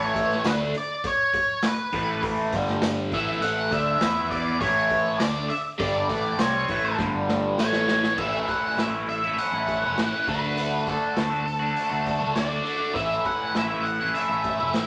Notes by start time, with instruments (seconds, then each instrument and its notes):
Already playing: fingered electric bass A1, overdriven electric guitar A2 E3 A3, lead electric guitar C#5
0.15 kick, open hi-hat
0.31 snare
0.44 fingered electric bass D2, overdriven electric guitar D3 A3 D4, lead electric guitar B4, snare, open hi-hat, tambourine
0.74 lead electric guitar D5, open hi-hat
1.04 lead electric guitar C#5, kick, open hi-hat
1.34 kick, open hi-hat
1.62 snare, open hi-hat, tambourine
1.67 lead electric guitar B4
1.92 fingered electric bass A1, overdriven electric guitar A2 E3 A3, kick, open hi-hat
2.23 kick, open hi-hat
2.52 fingered electric bass G1, overdriven electric guitar G2 D3 G3, kick, open hi-hat
2.67 snare
2.82 snare, open hi-hat, tambourine
3.12 fingered electric bass A1, overdriven electric guitar A2 E3 A3, lead electric guitar E5, kick, open hi-hat
3.42 fingered electric bass A1, overdriven electric guitar A2 E3 A3, lead electric guitar F#5, open hi-hat
3.71 fingered electric bass D2, overdriven electric guitar D3 A3 D4, lead electric guitar E5, kick, open hi-hat
4.01 fingered electric bass E2, overdriven electric guitar E3 B3 E4, snare, open hi-hat, tambourine
4.30 lead electric guitar D5, kick, open hi-hat
4.60 fingered electric bass A1, overdriven electric guitar A2 E3 A3, lead electric guitar C#5, kick, open hi-hat
4.90 kick, open hi-hat
5.19 fingered electric bass D2, overdriven electric guitar D3 A3, lead electric guitar D5, snare, open hi-hat, tambourine
5.23 overdriven electric guitar D4
5.50 lead electric guitar E5, open hi-hat
5.79 fingered electric bass G1, overdriven electric guitar G2 D3 G3, lead electric guitar D5, kick, open hi-hat
6.08 fingered electric bass A1, overdriven electric guitar A2 E3 A3, kick, open hi-hat
6.38 fingered electric bass C2, overdriven electric guitar C3 G3 C4, lead electric guitar C#5, snare, open hi-hat, tambourine
6.68 fingered electric bass A1, overdriven electric guitar A2 E3 A3, kick, open hi-hat
6.98 fingered electric bass G1, overdriven electric guitar G2 D3 G3, kick, snare
7.28 snare
7.58 fingered electric bass A1, overdriven electric guitar A2 E3 A3, lead electric guitar C#5, snare, tambourine
7.73 snare
7.88 snare
8.03 snare
8.18 fingered electric bass A1, overdriven electric guitar A2 E3 A3 C#4 E4, lead electric guitar E5, kick, crash
8.48 overdriven electric guitar E3 A3 C#4 E4, lead electric guitar F#5, kick, open hi-hat
8.77 fingered electric bass A1, overdriven electric guitar A2 E3 A3 C#4, lead electric guitar E5, snare, open hi-hat
8.82 overdriven electric guitar E4
8.94 overdriven electric guitar A3 C#4 E4
9.09 lead electric guitar E5, muted overdriven electric guitar stroke, open hi-hat
9.24 overdriven electric guitar C#4 E4
9.28 overdriven electric guitar A3
9.38 lead electric guitar F#5, open hi-hat
9.52 fingered electric bass A1, overdriven electric guitar C#4 E4
9.58 overdriven electric guitar A3
9.68 kick, open hi-hat
9.83 fingered electric bass F#1, overdriven electric guitar C#4 E4
9.88 overdriven electric guitar A3
9.97 fingered electric bass A1, overdriven electric guitar A2 E3 A3, snare, open hi-hat
10.02 overdriven electric guitar C#4 E4
10.14 overdriven electric guitar A3 C#4 E4
10.27 fingered electric bass D2, overdriven electric guitar D3 A3, lead electric guitar B4, kick, open hi-hat
10.31 overdriven electric guitar D4 F#4
10.44 overdriven electric guitar A3 D4 F#4
10.57 overdriven electric guitar D3 A3 D4, open hi-hat
10.61 overdriven electric guitar F#4
10.87 overdriven electric guitar D3 A3 D4, lead electric guitar A4, kick, snare, open hi-hat
10.91 overdriven electric guitar F#4
11.17 fingered electric bass D2, overdriven electric guitar D3 A3 D4 F#4, snare, open hi-hat
11.31 overdriven electric guitar A3 D4 F#4
11.46 muted overdriven electric guitar stroke, open hi-hat
11.60 overdriven electric guitar A3 D4 F#4
11.76 open hi-hat
11.89 fingered electric bass D2, overdriven electric guitar D4 F#4
11.94 overdriven electric guitar A3
12.06 kick, open hi-hat
12.19 fingered electric bass C#2, overdriven electric guitar A3 D4 F#4
12.33 fingered electric bass D2, overdriven electric guitar D3 A3 D4 F#4, lead electric guitar D5, snare, open hi-hat
12.49 overdriven electric guitar A3 D4 F#4
12.64 overdriven electric guitar D3 A3 D4 F#4, open hi-hat
12.78 overdriven electric guitar A3 D4 F#4
12.94 fingered electric bass A1, overdriven electric guitar A2 E3 A3 C#4 E4, lead electric guitar E5, kick, open hi-hat
13.24 overdriven electric guitar E3 A3 C#4 E4, lead electric guitar F#5, kick, open hi-hat
13.55 fingered electric bass A1, overdriven electric guitar A2 E3 A3 C#4, lead electric guitar E5, snare, open hi-hat
13.59 overdriven electric guitar E4
13.70 overdriven electric guitar A3 C#4 E4
13.83 lead electric guitar F#5, muted overdriven electric guitar stroke, open hi-hat
14.00 overdriven electric guitar A3 C#4 E4
14.14 lead electric guitar E5, open hi-hat
14.29 fingered electric bass A1, overdriven electric guitar C#4 E4
14.34 overdriven electric guitar A3
14.44 kick, open hi-hat
14.59 fingered electric bass F#1, overdriven electric guitar C#4 E4
14.63 overdriven electric guitar A3
14.74 fingered electric bass A1, overdriven electric guitar A2 E3 A3 C#4 E4, snare, open hi-hat